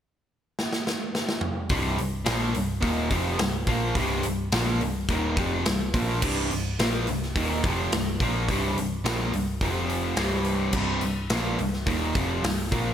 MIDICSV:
0, 0, Header, 1, 4, 480
1, 0, Start_track
1, 0, Tempo, 564440
1, 1450, Time_signature, 4, 2, 24, 8
1, 11002, End_track
2, 0, Start_track
2, 0, Title_t, "Overdriven electric guitar"
2, 0, Program_c, 0, 29
2, 1445, Note_on_c, 0, 36, 92
2, 1448, Note_on_c, 0, 43, 105
2, 1448, Note_on_c, 0, 48, 98
2, 1670, Note_off_c, 0, 36, 0
2, 1680, Note_off_c, 0, 43, 0
2, 1680, Note_on_c, 0, 36, 58
2, 1682, Note_off_c, 0, 48, 0
2, 1690, Note_on_c, 0, 43, 67
2, 1877, Note_off_c, 0, 36, 0
2, 1882, Note_off_c, 0, 43, 0
2, 1910, Note_on_c, 0, 46, 97
2, 1913, Note_on_c, 0, 53, 101
2, 1917, Note_on_c, 0, 58, 104
2, 2153, Note_off_c, 0, 46, 0
2, 2154, Note_off_c, 0, 53, 0
2, 2156, Note_off_c, 0, 58, 0
2, 2161, Note_on_c, 0, 36, 69
2, 2166, Note_on_c, 0, 43, 74
2, 2358, Note_off_c, 0, 36, 0
2, 2360, Note_off_c, 0, 43, 0
2, 2390, Note_on_c, 0, 39, 86
2, 2393, Note_on_c, 0, 46, 94
2, 2394, Note_on_c, 0, 51, 96
2, 2633, Note_off_c, 0, 39, 0
2, 2634, Note_off_c, 0, 46, 0
2, 2635, Note_off_c, 0, 51, 0
2, 2640, Note_on_c, 0, 41, 94
2, 2644, Note_on_c, 0, 48, 97
2, 2646, Note_on_c, 0, 53, 92
2, 2878, Note_off_c, 0, 41, 0
2, 2880, Note_off_c, 0, 48, 0
2, 2881, Note_off_c, 0, 53, 0
2, 2883, Note_on_c, 0, 36, 68
2, 2884, Note_on_c, 0, 43, 81
2, 3079, Note_off_c, 0, 36, 0
2, 3079, Note_off_c, 0, 43, 0
2, 3125, Note_on_c, 0, 46, 93
2, 3126, Note_on_c, 0, 58, 106
2, 3128, Note_on_c, 0, 53, 101
2, 3360, Note_off_c, 0, 46, 0
2, 3361, Note_off_c, 0, 58, 0
2, 3362, Note_off_c, 0, 53, 0
2, 3367, Note_on_c, 0, 36, 95
2, 3376, Note_on_c, 0, 43, 104
2, 3378, Note_on_c, 0, 48, 111
2, 3602, Note_off_c, 0, 36, 0
2, 3606, Note_off_c, 0, 43, 0
2, 3607, Note_off_c, 0, 48, 0
2, 3611, Note_on_c, 0, 36, 59
2, 3621, Note_on_c, 0, 43, 64
2, 3803, Note_off_c, 0, 36, 0
2, 3808, Note_off_c, 0, 43, 0
2, 3856, Note_on_c, 0, 46, 100
2, 3856, Note_on_c, 0, 53, 103
2, 3863, Note_on_c, 0, 58, 113
2, 4086, Note_off_c, 0, 46, 0
2, 4086, Note_off_c, 0, 53, 0
2, 4089, Note_off_c, 0, 58, 0
2, 4099, Note_on_c, 0, 36, 69
2, 4106, Note_on_c, 0, 43, 74
2, 4287, Note_off_c, 0, 36, 0
2, 4290, Note_off_c, 0, 43, 0
2, 4331, Note_on_c, 0, 39, 89
2, 4338, Note_on_c, 0, 46, 88
2, 4339, Note_on_c, 0, 51, 100
2, 4561, Note_off_c, 0, 39, 0
2, 4564, Note_on_c, 0, 41, 84
2, 4567, Note_off_c, 0, 46, 0
2, 4568, Note_off_c, 0, 51, 0
2, 4570, Note_on_c, 0, 48, 93
2, 4574, Note_on_c, 0, 53, 95
2, 4801, Note_off_c, 0, 41, 0
2, 4803, Note_off_c, 0, 48, 0
2, 4805, Note_off_c, 0, 53, 0
2, 4816, Note_on_c, 0, 36, 69
2, 4821, Note_on_c, 0, 43, 76
2, 5006, Note_off_c, 0, 36, 0
2, 5008, Note_off_c, 0, 43, 0
2, 5048, Note_on_c, 0, 46, 96
2, 5056, Note_on_c, 0, 58, 93
2, 5058, Note_on_c, 0, 53, 98
2, 5283, Note_off_c, 0, 46, 0
2, 5287, Note_off_c, 0, 53, 0
2, 5287, Note_off_c, 0, 58, 0
2, 5288, Note_on_c, 0, 36, 92
2, 5294, Note_on_c, 0, 43, 95
2, 5299, Note_on_c, 0, 48, 108
2, 5523, Note_off_c, 0, 36, 0
2, 5525, Note_off_c, 0, 43, 0
2, 5528, Note_off_c, 0, 48, 0
2, 5531, Note_on_c, 0, 36, 63
2, 5538, Note_on_c, 0, 43, 70
2, 5724, Note_off_c, 0, 36, 0
2, 5727, Note_off_c, 0, 43, 0
2, 5776, Note_on_c, 0, 46, 94
2, 5778, Note_on_c, 0, 53, 108
2, 5787, Note_on_c, 0, 58, 102
2, 6007, Note_off_c, 0, 46, 0
2, 6008, Note_off_c, 0, 53, 0
2, 6012, Note_off_c, 0, 58, 0
2, 6027, Note_on_c, 0, 36, 64
2, 6032, Note_on_c, 0, 43, 76
2, 6211, Note_off_c, 0, 36, 0
2, 6214, Note_off_c, 0, 43, 0
2, 6267, Note_on_c, 0, 39, 91
2, 6270, Note_on_c, 0, 46, 104
2, 6270, Note_on_c, 0, 51, 99
2, 6492, Note_off_c, 0, 39, 0
2, 6494, Note_off_c, 0, 46, 0
2, 6494, Note_off_c, 0, 51, 0
2, 6511, Note_on_c, 0, 41, 93
2, 6512, Note_on_c, 0, 48, 98
2, 6522, Note_on_c, 0, 53, 94
2, 6734, Note_off_c, 0, 41, 0
2, 6735, Note_off_c, 0, 48, 0
2, 6740, Note_off_c, 0, 53, 0
2, 6758, Note_on_c, 0, 36, 66
2, 6758, Note_on_c, 0, 43, 73
2, 6937, Note_off_c, 0, 43, 0
2, 6938, Note_off_c, 0, 36, 0
2, 6986, Note_on_c, 0, 53, 93
2, 6990, Note_on_c, 0, 46, 93
2, 6996, Note_on_c, 0, 58, 105
2, 7212, Note_off_c, 0, 53, 0
2, 7214, Note_off_c, 0, 46, 0
2, 7217, Note_off_c, 0, 58, 0
2, 7228, Note_on_c, 0, 36, 97
2, 7229, Note_on_c, 0, 43, 102
2, 7233, Note_on_c, 0, 48, 106
2, 7453, Note_off_c, 0, 36, 0
2, 7454, Note_off_c, 0, 43, 0
2, 7456, Note_off_c, 0, 48, 0
2, 7474, Note_on_c, 0, 36, 62
2, 7484, Note_on_c, 0, 43, 65
2, 7656, Note_off_c, 0, 36, 0
2, 7661, Note_off_c, 0, 43, 0
2, 7695, Note_on_c, 0, 46, 104
2, 7700, Note_on_c, 0, 53, 105
2, 7704, Note_on_c, 0, 58, 102
2, 7927, Note_off_c, 0, 46, 0
2, 7930, Note_off_c, 0, 53, 0
2, 7932, Note_off_c, 0, 58, 0
2, 7937, Note_on_c, 0, 36, 68
2, 7943, Note_on_c, 0, 43, 72
2, 8127, Note_off_c, 0, 36, 0
2, 8130, Note_off_c, 0, 43, 0
2, 8185, Note_on_c, 0, 41, 92
2, 8186, Note_on_c, 0, 48, 98
2, 8190, Note_on_c, 0, 53, 90
2, 8641, Note_off_c, 0, 41, 0
2, 8643, Note_off_c, 0, 48, 0
2, 8645, Note_on_c, 0, 36, 98
2, 8650, Note_off_c, 0, 53, 0
2, 8653, Note_on_c, 0, 43, 102
2, 8653, Note_on_c, 0, 48, 108
2, 9122, Note_off_c, 0, 36, 0
2, 9126, Note_off_c, 0, 43, 0
2, 9126, Note_off_c, 0, 48, 0
2, 9134, Note_on_c, 0, 36, 99
2, 9147, Note_on_c, 0, 43, 102
2, 9150, Note_on_c, 0, 48, 100
2, 9367, Note_off_c, 0, 36, 0
2, 9373, Note_off_c, 0, 43, 0
2, 9375, Note_off_c, 0, 48, 0
2, 9386, Note_on_c, 0, 36, 61
2, 9390, Note_on_c, 0, 43, 67
2, 9572, Note_off_c, 0, 36, 0
2, 9574, Note_off_c, 0, 43, 0
2, 9616, Note_on_c, 0, 46, 102
2, 9620, Note_on_c, 0, 53, 97
2, 9628, Note_on_c, 0, 58, 102
2, 9847, Note_off_c, 0, 46, 0
2, 9849, Note_off_c, 0, 53, 0
2, 9853, Note_off_c, 0, 58, 0
2, 9862, Note_on_c, 0, 36, 63
2, 9865, Note_on_c, 0, 43, 75
2, 10050, Note_off_c, 0, 36, 0
2, 10051, Note_off_c, 0, 43, 0
2, 10089, Note_on_c, 0, 39, 84
2, 10096, Note_on_c, 0, 46, 93
2, 10097, Note_on_c, 0, 51, 104
2, 10324, Note_off_c, 0, 39, 0
2, 10328, Note_off_c, 0, 46, 0
2, 10328, Note_off_c, 0, 51, 0
2, 10334, Note_on_c, 0, 41, 93
2, 10340, Note_on_c, 0, 48, 98
2, 10344, Note_on_c, 0, 53, 100
2, 10566, Note_off_c, 0, 41, 0
2, 10569, Note_off_c, 0, 48, 0
2, 10571, Note_off_c, 0, 53, 0
2, 10581, Note_on_c, 0, 36, 63
2, 10588, Note_on_c, 0, 43, 81
2, 10769, Note_off_c, 0, 36, 0
2, 10772, Note_off_c, 0, 43, 0
2, 10812, Note_on_c, 0, 46, 84
2, 10820, Note_on_c, 0, 58, 96
2, 10822, Note_on_c, 0, 53, 91
2, 11002, Note_off_c, 0, 46, 0
2, 11002, Note_off_c, 0, 53, 0
2, 11002, Note_off_c, 0, 58, 0
2, 11002, End_track
3, 0, Start_track
3, 0, Title_t, "Picked electric bass"
3, 0, Program_c, 1, 34
3, 1449, Note_on_c, 1, 24, 90
3, 1673, Note_off_c, 1, 24, 0
3, 1692, Note_on_c, 1, 24, 74
3, 1914, Note_off_c, 1, 24, 0
3, 1930, Note_on_c, 1, 34, 91
3, 2153, Note_off_c, 1, 34, 0
3, 2175, Note_on_c, 1, 24, 84
3, 2396, Note_off_c, 1, 24, 0
3, 2405, Note_on_c, 1, 27, 86
3, 2631, Note_off_c, 1, 27, 0
3, 2641, Note_on_c, 1, 29, 90
3, 2868, Note_off_c, 1, 29, 0
3, 2885, Note_on_c, 1, 24, 80
3, 3111, Note_off_c, 1, 24, 0
3, 3125, Note_on_c, 1, 34, 95
3, 3351, Note_off_c, 1, 34, 0
3, 3363, Note_on_c, 1, 24, 100
3, 3590, Note_off_c, 1, 24, 0
3, 3603, Note_on_c, 1, 24, 84
3, 3830, Note_off_c, 1, 24, 0
3, 3847, Note_on_c, 1, 34, 94
3, 4072, Note_off_c, 1, 34, 0
3, 4093, Note_on_c, 1, 24, 82
3, 4315, Note_off_c, 1, 24, 0
3, 4328, Note_on_c, 1, 27, 87
3, 4553, Note_off_c, 1, 27, 0
3, 4570, Note_on_c, 1, 29, 94
3, 4794, Note_off_c, 1, 29, 0
3, 4824, Note_on_c, 1, 24, 80
3, 5041, Note_off_c, 1, 24, 0
3, 5052, Note_on_c, 1, 34, 94
3, 5275, Note_off_c, 1, 34, 0
3, 5296, Note_on_c, 1, 24, 95
3, 5517, Note_off_c, 1, 24, 0
3, 5544, Note_on_c, 1, 24, 81
3, 5762, Note_off_c, 1, 24, 0
3, 5781, Note_on_c, 1, 34, 96
3, 6000, Note_off_c, 1, 34, 0
3, 6017, Note_on_c, 1, 24, 82
3, 6238, Note_off_c, 1, 24, 0
3, 6260, Note_on_c, 1, 27, 92
3, 6480, Note_off_c, 1, 27, 0
3, 6497, Note_on_c, 1, 29, 94
3, 6718, Note_off_c, 1, 29, 0
3, 6736, Note_on_c, 1, 24, 78
3, 6958, Note_off_c, 1, 24, 0
3, 6982, Note_on_c, 1, 34, 95
3, 7201, Note_off_c, 1, 34, 0
3, 7215, Note_on_c, 1, 24, 94
3, 7437, Note_off_c, 1, 24, 0
3, 7454, Note_on_c, 1, 24, 75
3, 7677, Note_off_c, 1, 24, 0
3, 7689, Note_on_c, 1, 34, 97
3, 7914, Note_off_c, 1, 34, 0
3, 7932, Note_on_c, 1, 24, 79
3, 8156, Note_off_c, 1, 24, 0
3, 8173, Note_on_c, 1, 29, 88
3, 8620, Note_off_c, 1, 29, 0
3, 8648, Note_on_c, 1, 24, 89
3, 9097, Note_off_c, 1, 24, 0
3, 9133, Note_on_c, 1, 24, 96
3, 9357, Note_off_c, 1, 24, 0
3, 9373, Note_on_c, 1, 24, 75
3, 9597, Note_off_c, 1, 24, 0
3, 9610, Note_on_c, 1, 34, 93
3, 9835, Note_off_c, 1, 34, 0
3, 9851, Note_on_c, 1, 24, 83
3, 10075, Note_off_c, 1, 24, 0
3, 10093, Note_on_c, 1, 27, 90
3, 10316, Note_off_c, 1, 27, 0
3, 10335, Note_on_c, 1, 29, 95
3, 10557, Note_off_c, 1, 29, 0
3, 10567, Note_on_c, 1, 24, 81
3, 10793, Note_off_c, 1, 24, 0
3, 10818, Note_on_c, 1, 34, 91
3, 11002, Note_off_c, 1, 34, 0
3, 11002, End_track
4, 0, Start_track
4, 0, Title_t, "Drums"
4, 499, Note_on_c, 9, 38, 68
4, 584, Note_off_c, 9, 38, 0
4, 617, Note_on_c, 9, 38, 76
4, 702, Note_off_c, 9, 38, 0
4, 740, Note_on_c, 9, 38, 84
4, 825, Note_off_c, 9, 38, 0
4, 977, Note_on_c, 9, 38, 83
4, 1062, Note_off_c, 9, 38, 0
4, 1094, Note_on_c, 9, 38, 90
4, 1179, Note_off_c, 9, 38, 0
4, 1200, Note_on_c, 9, 45, 100
4, 1285, Note_off_c, 9, 45, 0
4, 1439, Note_on_c, 9, 46, 72
4, 1445, Note_on_c, 9, 36, 101
4, 1524, Note_off_c, 9, 46, 0
4, 1530, Note_off_c, 9, 36, 0
4, 1686, Note_on_c, 9, 46, 61
4, 1771, Note_off_c, 9, 46, 0
4, 1919, Note_on_c, 9, 46, 85
4, 1925, Note_on_c, 9, 38, 109
4, 2004, Note_off_c, 9, 46, 0
4, 2010, Note_off_c, 9, 38, 0
4, 2163, Note_on_c, 9, 46, 60
4, 2248, Note_off_c, 9, 46, 0
4, 2402, Note_on_c, 9, 36, 103
4, 2403, Note_on_c, 9, 46, 80
4, 2488, Note_off_c, 9, 36, 0
4, 2488, Note_off_c, 9, 46, 0
4, 2641, Note_on_c, 9, 46, 67
4, 2642, Note_on_c, 9, 36, 104
4, 2726, Note_off_c, 9, 46, 0
4, 2727, Note_off_c, 9, 36, 0
4, 2881, Note_on_c, 9, 46, 82
4, 2887, Note_on_c, 9, 38, 107
4, 2966, Note_off_c, 9, 46, 0
4, 2972, Note_off_c, 9, 38, 0
4, 3121, Note_on_c, 9, 36, 109
4, 3124, Note_on_c, 9, 46, 65
4, 3206, Note_off_c, 9, 36, 0
4, 3209, Note_off_c, 9, 46, 0
4, 3359, Note_on_c, 9, 46, 78
4, 3361, Note_on_c, 9, 36, 103
4, 3444, Note_off_c, 9, 46, 0
4, 3446, Note_off_c, 9, 36, 0
4, 3598, Note_on_c, 9, 46, 62
4, 3684, Note_off_c, 9, 46, 0
4, 3842, Note_on_c, 9, 46, 79
4, 3848, Note_on_c, 9, 38, 109
4, 3927, Note_off_c, 9, 46, 0
4, 3933, Note_off_c, 9, 38, 0
4, 4089, Note_on_c, 9, 46, 60
4, 4174, Note_off_c, 9, 46, 0
4, 4325, Note_on_c, 9, 46, 71
4, 4326, Note_on_c, 9, 36, 105
4, 4410, Note_off_c, 9, 46, 0
4, 4411, Note_off_c, 9, 36, 0
4, 4567, Note_on_c, 9, 36, 115
4, 4570, Note_on_c, 9, 46, 59
4, 4652, Note_off_c, 9, 36, 0
4, 4655, Note_off_c, 9, 46, 0
4, 4808, Note_on_c, 9, 46, 75
4, 4814, Note_on_c, 9, 38, 114
4, 4893, Note_off_c, 9, 46, 0
4, 4899, Note_off_c, 9, 38, 0
4, 5051, Note_on_c, 9, 36, 109
4, 5052, Note_on_c, 9, 46, 60
4, 5136, Note_off_c, 9, 36, 0
4, 5137, Note_off_c, 9, 46, 0
4, 5290, Note_on_c, 9, 49, 101
4, 5292, Note_on_c, 9, 36, 100
4, 5375, Note_off_c, 9, 49, 0
4, 5377, Note_off_c, 9, 36, 0
4, 5534, Note_on_c, 9, 46, 63
4, 5619, Note_off_c, 9, 46, 0
4, 5776, Note_on_c, 9, 46, 83
4, 5782, Note_on_c, 9, 38, 110
4, 5861, Note_off_c, 9, 46, 0
4, 5867, Note_off_c, 9, 38, 0
4, 6011, Note_on_c, 9, 46, 58
4, 6096, Note_off_c, 9, 46, 0
4, 6145, Note_on_c, 9, 38, 32
4, 6230, Note_off_c, 9, 38, 0
4, 6256, Note_on_c, 9, 36, 96
4, 6258, Note_on_c, 9, 46, 82
4, 6341, Note_off_c, 9, 36, 0
4, 6343, Note_off_c, 9, 46, 0
4, 6496, Note_on_c, 9, 36, 115
4, 6497, Note_on_c, 9, 46, 63
4, 6581, Note_off_c, 9, 36, 0
4, 6582, Note_off_c, 9, 46, 0
4, 6737, Note_on_c, 9, 46, 83
4, 6743, Note_on_c, 9, 38, 109
4, 6822, Note_off_c, 9, 46, 0
4, 6828, Note_off_c, 9, 38, 0
4, 6975, Note_on_c, 9, 36, 103
4, 6980, Note_on_c, 9, 46, 60
4, 7061, Note_off_c, 9, 36, 0
4, 7065, Note_off_c, 9, 46, 0
4, 7216, Note_on_c, 9, 36, 103
4, 7219, Note_on_c, 9, 46, 83
4, 7301, Note_off_c, 9, 36, 0
4, 7304, Note_off_c, 9, 46, 0
4, 7463, Note_on_c, 9, 46, 62
4, 7548, Note_off_c, 9, 46, 0
4, 7700, Note_on_c, 9, 46, 84
4, 7706, Note_on_c, 9, 38, 115
4, 7785, Note_off_c, 9, 46, 0
4, 7791, Note_off_c, 9, 38, 0
4, 7938, Note_on_c, 9, 46, 59
4, 8023, Note_off_c, 9, 46, 0
4, 8173, Note_on_c, 9, 36, 98
4, 8175, Note_on_c, 9, 46, 71
4, 8258, Note_off_c, 9, 36, 0
4, 8260, Note_off_c, 9, 46, 0
4, 8415, Note_on_c, 9, 46, 60
4, 8500, Note_off_c, 9, 46, 0
4, 8644, Note_on_c, 9, 46, 76
4, 8650, Note_on_c, 9, 38, 107
4, 8729, Note_off_c, 9, 46, 0
4, 8735, Note_off_c, 9, 38, 0
4, 8882, Note_on_c, 9, 46, 57
4, 8967, Note_off_c, 9, 46, 0
4, 9122, Note_on_c, 9, 57, 97
4, 9126, Note_on_c, 9, 36, 101
4, 9207, Note_off_c, 9, 57, 0
4, 9211, Note_off_c, 9, 36, 0
4, 9362, Note_on_c, 9, 46, 60
4, 9447, Note_off_c, 9, 46, 0
4, 9606, Note_on_c, 9, 46, 78
4, 9612, Note_on_c, 9, 38, 118
4, 9691, Note_off_c, 9, 46, 0
4, 9697, Note_off_c, 9, 38, 0
4, 9852, Note_on_c, 9, 46, 58
4, 9937, Note_off_c, 9, 46, 0
4, 9977, Note_on_c, 9, 38, 33
4, 10062, Note_off_c, 9, 38, 0
4, 10089, Note_on_c, 9, 46, 79
4, 10092, Note_on_c, 9, 36, 106
4, 10174, Note_off_c, 9, 46, 0
4, 10177, Note_off_c, 9, 36, 0
4, 10334, Note_on_c, 9, 36, 109
4, 10335, Note_on_c, 9, 46, 67
4, 10420, Note_off_c, 9, 36, 0
4, 10420, Note_off_c, 9, 46, 0
4, 10579, Note_on_c, 9, 46, 81
4, 10585, Note_on_c, 9, 38, 117
4, 10664, Note_off_c, 9, 46, 0
4, 10670, Note_off_c, 9, 38, 0
4, 10818, Note_on_c, 9, 36, 109
4, 10819, Note_on_c, 9, 46, 63
4, 10903, Note_off_c, 9, 36, 0
4, 10904, Note_off_c, 9, 46, 0
4, 11002, End_track
0, 0, End_of_file